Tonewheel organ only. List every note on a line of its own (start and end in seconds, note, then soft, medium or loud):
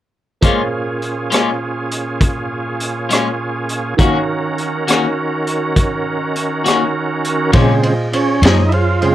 0.42 3.94 A#2 medium
0.42 3.95 C#4 soft
0.42 3.95 F4 medium
0.42 3.95 G#4 medium
4.00 7.51 D#3 medium
4.00 7.51 C#4 medium
4.00 7.51 F#4 medium
4.00 7.51 A#4 medium
7.54 7.93 C#3 soft
7.54 7.94 G#3 soft
7.54 7.94 C4 medium
8.14 8.42 C#4 medium
8.44 8.72 D#4 medium
8.69 8.72 E4 medium
8.74 9.15 F4 medium
9.02 9.15 C#3 soft
9.02 9.15 G#3 soft
9.02 9.15 C4 medium